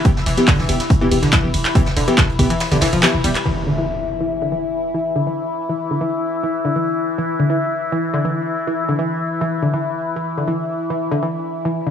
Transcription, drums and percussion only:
0.05 kick loud
0.05 closed hi-hat medium
0.17 snare medium
0.26 snare soft
0.26 closed hi-hat medium
0.26 open hi-hat loud
0.26 ride medium
0.37 snare medium
0.37 closed hi-hat medium
0.47 kick loud
0.47 snare loud
0.47 clap loud
0.47 closed hi-hat medium
0.47 open hi-hat medium
0.59 snare soft
0.69 closed hi-hat medium
0.69 open hi-hat loud
0.69 ride medium
0.80 snare soft
0.80 closed hi-hat medium
0.90 kick loud
0.90 closed hi-hat medium
1.02 closed hi-hat soft
1.11 closed hi-hat medium
1.11 open hi-hat loud
1.11 ride medium
1.22 snare soft
1.22 closed hi-hat medium
1.32 kick loud
1.32 snare loud
1.32 clap loud
1.32 closed hi-hat loud
1.32 closed hi-hat medium
1.54 closed hi-hat medium
1.54 open hi-hat loud
1.54 ride medium
1.65 clap medium
1.65 closed hi-hat medium
1.75 kick loud
1.75 closed hi-hat medium
1.75 closed hi-hat loud
1.86 snare medium
1.97 snare soft
1.97 closed hi-hat medium
1.97 open hi-hat loud
1.97 ride medium
2.08 closed hi-hat medium
2.08 closed hi-hat soft
2.18 kick loud
2.18 snare loud
2.18 clap loud
2.18 closed hi-hat medium
2.29 closed hi-hat soft
2.39 kick medium
2.39 closed hi-hat medium
2.39 open hi-hat loud
2.39 ride medium
2.50 closed hi-hat medium
2.60 snare loud
2.60 closed hi-hat medium
2.60 open hi-hat medium
2.71 snare medium
2.71 open hi-hat medium
2.81 snare loud
2.81 open hi-hat loud
2.81 open hi-hat medium
2.81 ride medium
2.93 closed hi-hat medium
3.03 snare loud
3.03 clap loud
3.03 closed hi-hat medium
3.24 closed hi-hat medium
3.24 open hi-hat loud
3.24 ride medium
3.35 clap medium
3.35 closed hi-hat soft
3.35 closed hi-hat medium

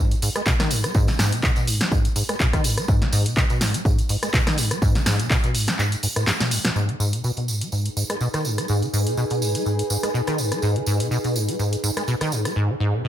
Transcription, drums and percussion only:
0.11 closed hi-hat soft
0.11 tambourine soft
0.22 open hi-hat loud
0.22 tambourine medium
0.36 cross-stick medium
0.36 closed hi-hat medium
0.36 tambourine soft
0.46 kick loud
0.46 clap loud
0.46 tambourine medium
0.60 cross-stick medium
0.60 snare medium
0.60 closed hi-hat medium
0.60 tambourine soft
0.71 open hi-hat loud
0.71 tambourine medium
0.84 cross-stick medium
0.84 closed hi-hat medium
0.84 tambourine soft
0.94 kick loud
0.94 tambourine soft
1.08 snare soft
1.08 closed hi-hat soft
1.08 tambourine soft
1.19 snare medium
1.19 open hi-hat medium
1.19 tambourine medium
1.32 closed hi-hat medium
1.32 tambourine soft
1.43 kick loud
1.43 clap loud
1.43 tambourine soft
1.56 closed hi-hat soft
1.56 tambourine soft
1.67 open hi-hat loud
1.67 tambourine medium
1.81 snare medium
1.81 closed hi-hat medium
1.81 tambourine soft
1.92 kick loud
1.92 tambourine soft
2.05 closed hi-hat medium
2.05 tambourine soft
2.16 open hi-hat loud
2.16 tambourine medium
2.29 cross-stick medium
2.29 closed hi-hat medium
2.29 tambourine soft
2.40 kick loud
2.40 clap loud
2.40 tambourine soft
2.53 kick medium
2.53 cross-stick medium
2.53 closed hi-hat soft
2.53 tambourine soft
2.64 open hi-hat loud
2.64 tambourine medium
2.78 cross-stick medium
2.78 closed hi-hat medium
2.78 tambourine soft
2.88 kick loud
2.88 tambourine soft
3.02 snare soft
3.02 closed hi-hat soft
3.13 open hi-hat loud
3.13 tambourine medium
3.26 closed hi-hat medium
3.26 tambourine soft
3.37 kick loud
3.37 clap loud
3.37 tambourine soft
3.50 closed hi-hat soft
3.50 tambourine soft
3.61 snare medium
3.61 open hi-hat loud
3.61 tambourine medium
3.74 closed hi-hat medium
3.74 tambourine soft
3.85 kick loud
3.85 tambourine soft
3.99 closed hi-hat medium
3.99 tambourine soft
4.09 open hi-hat medium
4.09 tambourine medium
4.23 cross-stick medium
4.23 closed hi-hat medium
4.23 tambourine soft
4.34 kick loud
4.34 clap loud
4.34 tambourine soft
4.47 cross-stick medium
4.47 snare medium
4.47 closed hi-hat medium
4.47 tambourine soft
4.58 open hi-hat loud
4.58 tambourine medium
4.71 cross-stick medium
4.71 closed hi-hat medium
4.71 tambourine soft
4.82 kick loud
4.82 tambourine medium
4.95 snare soft
4.95 closed hi-hat soft
4.95 tambourine soft
5.06 snare medium
5.06 open hi-hat loud
5.06 tambourine medium
5.19 closed hi-hat medium
5.19 tambourine soft
5.30 kick loud
5.30 clap loud
5.30 tambourine soft
5.43 closed hi-hat soft
5.43 tambourine soft
5.55 open hi-hat loud
5.55 tambourine medium
5.67 snare medium
5.67 closed hi-hat medium
5.67 tambourine soft
5.79 clap medium
5.79 tambourine medium
5.92 closed hi-hat medium
5.92 tambourine soft
6.03 open hi-hat loud
6.03 tambourine loud
6.16 cross-stick medium
6.16 closed hi-hat medium
6.16 tambourine soft
6.27 snare medium
6.27 clap loud
6.27 tambourine soft
6.40 snare medium
6.40 closed hi-hat medium
6.40 tambourine soft
6.51 open hi-hat loud
6.51 tambourine medium
6.65 snare medium
6.65 closed hi-hat medium
6.65 tambourine soft
6.76 tambourine soft
6.89 closed hi-hat soft
7.00 tambourine medium
7.13 closed hi-hat medium
7.13 tambourine soft
7.24 tambourine soft
7.37 closed hi-hat soft
7.37 tambourine soft
7.48 tambourine medium
7.61 closed hi-hat medium
7.61 tambourine soft
7.72 tambourine soft
7.85 closed hi-hat soft
7.85 tambourine soft
7.97 tambourine medium
8.10 cross-stick medium
8.10 closed hi-hat medium
8.10 tambourine soft
8.21 tambourine soft
8.34 cross-stick medium
8.34 closed hi-hat soft
8.34 tambourine soft
8.45 tambourine medium
8.58 cross-stick medium
8.58 closed hi-hat medium
8.58 tambourine soft
8.68 tambourine medium
8.82 closed hi-hat soft
8.82 tambourine soft
8.94 tambourine loud
9.06 closed hi-hat medium
9.06 tambourine soft
9.17 tambourine soft
9.30 closed hi-hat soft
9.30 tambourine soft
9.42 tambourine medium
9.55 closed hi-hat medium
9.55 tambourine soft
9.66 tambourine soft
9.79 closed hi-hat soft
9.79 tambourine soft
9.90 tambourine medium
10.03 cross-stick medium
10.03 closed hi-hat medium
10.03 tambourine soft
10.15 tambourine medium
10.27 cross-stick medium
10.27 closed hi-hat soft
10.27 tambourine soft
10.38 tambourine medium
10.52 cross-stick medium
10.52 closed hi-hat medium
10.52 tambourine soft
10.62 tambourine soft
10.76 closed hi-hat soft
10.86 tambourine medium
11.00 closed hi-hat medium
11.00 tambourine soft
11.11 tambourine soft
11.24 closed hi-hat soft
11.24 tambourine soft
11.36 tambourine medium
11.49 closed hi-hat medium
11.49 tambourine soft
11.59 tambourine medium
11.73 closed hi-hat soft
11.73 tambourine soft
11.84 tambourine loud
11.97 cross-stick medium
11.97 closed hi-hat medium
11.97 tambourine soft
12.08 tambourine soft
12.21 cross-stick medium
12.21 closed hi-hat soft
12.21 tambourine soft
12.32 tambourine medium
12.45 cross-stick medium
12.45 closed hi-hat medium
12.45 tambourine soft

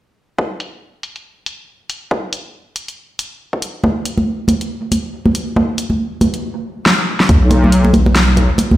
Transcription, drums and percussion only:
0.39 kick loud
0.60 closed hi-hat medium
1.03 closed hi-hat medium
1.16 closed hi-hat soft
1.46 closed hi-hat medium
1.90 closed hi-hat medium
2.11 kick loud
2.33 closed hi-hat medium
2.76 closed hi-hat medium
2.88 closed hi-hat soft
3.19 closed hi-hat medium
3.53 kick medium
3.62 closed hi-hat medium
3.84 kick loud
3.84 high conga medium
4.05 closed hi-hat medium
4.18 high conga medium
4.48 closed hi-hat medium
4.48 high conga medium
4.61 closed hi-hat soft
4.92 closed hi-hat medium
4.92 high conga medium
5.26 high conga medium
5.35 closed hi-hat medium
5.56 kick loud
5.56 high conga medium
5.78 closed hi-hat medium
5.90 high conga medium
6.21 closed hi-hat medium
6.21 high conga medium
6.34 closed hi-hat soft
6.86 snare loud
7.20 snare medium
7.29 kick loud
7.29 closed hi-hat medium
7.29 muted conga soft
7.29 high conga medium
7.51 closed hi-hat medium
7.51 muted conga medium
7.64 high conga medium
7.72 closed hi-hat medium
7.84 muted conga medium
7.94 closed hi-hat soft
7.94 high conga medium
8.06 muted conga medium
8.15 snare loud
8.15 closed hi-hat medium
8.37 closed hi-hat medium
8.37 muted conga soft
8.37 high conga medium
8.58 closed hi-hat medium
8.58 muted conga medium
8.71 high conga medium

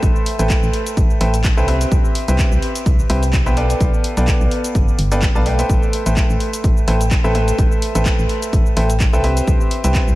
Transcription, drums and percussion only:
0.03 kick loud
0.03 closed hi-hat medium
0.03 shaker soft
0.16 shaker soft
0.26 open hi-hat loud
0.39 closed hi-hat medium
0.39 shaker medium
0.50 kick loud
0.50 clap loud
0.50 closed hi-hat medium
0.50 shaker medium
0.63 shaker soft
0.73 open hi-hat loud
0.86 closed hi-hat medium
0.86 shaker medium
0.97 kick loud
0.97 closed hi-hat medium
0.97 shaker medium
1.10 shaker soft
1.21 open hi-hat loud
1.34 closed hi-hat medium
1.34 shaker medium
1.44 kick loud
1.44 clap loud
1.44 closed hi-hat medium
1.44 shaker medium
1.58 shaker soft
1.68 open hi-hat loud
1.81 closed hi-hat medium
1.81 shaker medium
1.92 kick loud
1.92 closed hi-hat soft
1.92 shaker medium
2.05 shaker soft
2.15 open hi-hat loud
2.28 closed hi-hat medium
2.28 shaker medium
2.39 kick loud
2.39 clap loud
2.39 closed hi-hat medium
2.39 shaker medium
2.52 shaker soft
2.62 open hi-hat medium
2.75 closed hi-hat medium
2.75 shaker medium
2.86 kick loud
2.86 closed hi-hat medium
2.86 shaker medium
2.99 shaker soft
3.10 open hi-hat loud
3.23 closed hi-hat medium
3.23 shaker medium
3.33 kick loud
3.33 clap loud
3.33 closed hi-hat medium
3.33 shaker medium
3.47 shaker soft
3.57 open hi-hat loud
3.70 closed hi-hat medium
3.70 shaker medium
3.81 kick loud
3.81 closed hi-hat soft
3.81 shaker medium
3.94 shaker soft
4.04 open hi-hat loud
4.17 closed hi-hat medium
4.17 shaker medium
4.28 kick loud
4.28 clap loud
4.28 closed hi-hat medium
4.28 shaker medium
4.41 shaker soft
4.51 open hi-hat medium
4.64 closed hi-hat medium
4.64 shaker medium
4.75 kick loud
4.75 closed hi-hat soft
4.75 shaker medium
4.88 shaker soft
4.99 open hi-hat loud
5.12 closed hi-hat medium
5.12 shaker medium
5.22 kick loud
5.22 clap loud
5.22 closed hi-hat soft
5.22 shaker medium
5.35 shaker soft
5.46 open hi-hat loud
5.59 closed hi-hat medium
5.59 shaker medium
5.70 kick loud
5.70 closed hi-hat soft
5.70 shaker medium
5.83 shaker soft
5.93 open hi-hat loud
6.06 closed hi-hat medium
6.06 shaker medium
6.17 kick loud
6.17 clap loud
6.17 closed hi-hat soft
6.17 shaker medium
6.30 shaker soft
6.40 open hi-hat medium
6.53 closed hi-hat medium
6.53 shaker medium
6.64 kick loud
6.64 closed hi-hat medium
6.64 shaker medium
6.77 shaker soft
6.88 open hi-hat loud
7.01 closed hi-hat medium
7.01 shaker medium
7.11 kick loud
7.11 clap loud
7.11 closed hi-hat soft
7.11 shaker medium
7.25 shaker soft
7.35 open hi-hat medium
7.48 closed hi-hat medium
7.48 shaker medium
7.59 kick loud
7.59 closed hi-hat medium
7.59 shaker medium
7.72 shaker soft
7.82 open hi-hat loud
7.95 closed hi-hat medium
7.95 shaker medium
8.06 kick loud
8.06 clap loud
8.06 closed hi-hat medium
8.06 shaker medium
8.19 shaker soft
8.29 open hi-hat medium
8.42 closed hi-hat medium
8.42 shaker medium
8.53 kick loud
8.53 closed hi-hat medium
8.53 shaker medium
8.66 shaker soft
8.77 open hi-hat loud
8.90 closed hi-hat medium
8.90 shaker medium
9.00 kick loud
9.00 clap loud
9.00 closed hi-hat medium
9.00 shaker medium
9.13 shaker soft
9.24 open hi-hat medium
9.37 closed hi-hat medium
9.37 shaker medium
9.48 kick loud
9.48 closed hi-hat medium
9.48 shaker medium
9.61 shaker soft
9.71 open hi-hat loud
9.84 closed hi-hat medium
9.84 shaker medium
9.95 kick loud
9.95 clap loud
9.95 closed hi-hat medium
9.95 shaker medium
10.08 shaker soft

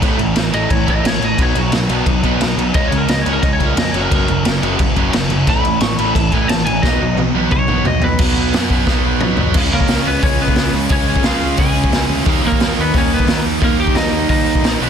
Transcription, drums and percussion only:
0.02 kick loud
0.02 crash medium
0.19 crash medium
0.36 snare loud
0.36 crash medium
0.53 crash medium
0.70 kick loud
0.70 crash medium
0.87 kick medium
0.87 crash medium
1.05 snare loud
1.05 crash loud
1.22 crash medium
1.38 kick loud
1.38 crash medium
1.55 crash medium
1.72 snare medium
1.72 crash medium
1.89 crash medium
2.06 kick loud
2.06 crash medium
2.23 kick medium
2.23 crash soft
2.41 snare loud
2.41 crash medium
2.59 crash medium
2.74 kick loud
2.74 crash medium
2.92 crash medium
3.08 snare loud
3.08 crash medium
3.26 crash medium
3.43 kick loud
3.43 crash medium
3.60 kick medium
3.60 crash medium
3.77 snare loud
3.77 crash loud
3.94 crash medium
4.11 kick loud
4.11 crash medium
4.28 crash medium
4.45 snare loud
4.45 crash medium
4.63 crash medium
4.79 kick loud
4.79 crash medium
4.96 kick medium
4.96 crash medium
5.13 snare loud
5.13 crash medium
5.30 crash medium
5.47 kick loud
5.47 crash medium
5.65 crash medium
5.80 snare loud
5.80 crash medium
5.98 crash medium
6.15 kick loud
6.15 crash medium
6.32 kick medium
6.32 crash medium
6.49 snare loud
6.49 crash loud
6.66 crash medium
6.83 kick loud
6.83 snare medium
7.17 high tom medium
7.51 kick loud
7.51 mid tom medium
7.68 mid tom medium
7.85 floor tom loud
8.02 floor tom loud
8.19 kick loud
8.19 crash loud
8.53 snare loud
8.53 open hi-hat medium
8.70 kick medium
8.87 kick loud
8.87 snare medium
9.21 mid tom loud
9.37 floor tom loud
9.54 kick loud
9.54 crash loud
9.80 kick medium
9.88 snare loud
9.88 open hi-hat medium
10.22 kick loud
10.22 open hi-hat medium
10.48 kick medium
10.55 snare loud
10.55 open hi-hat medium
10.89 kick loud
10.89 open hi-hat medium
11.16 kick medium
11.23 snare loud
11.23 open hi-hat medium
11.57 kick loud
11.57 open hi-hat medium
11.84 kick medium
11.92 snare loud
11.92 open hi-hat medium
12.26 kick loud
12.26 open hi-hat medium
12.52 kick medium
12.60 snare loud
12.60 open hi-hat medium
12.94 kick loud
12.94 open hi-hat medium
13.19 kick medium
13.27 snare loud
13.27 open hi-hat medium
13.62 kick loud
13.62 open hi-hat medium
13.87 kick medium
13.95 snare loud
13.95 open hi-hat medium
14.29 kick loud
14.29 open hi-hat medium
14.55 kick medium
14.64 snare loud
14.64 open hi-hat medium

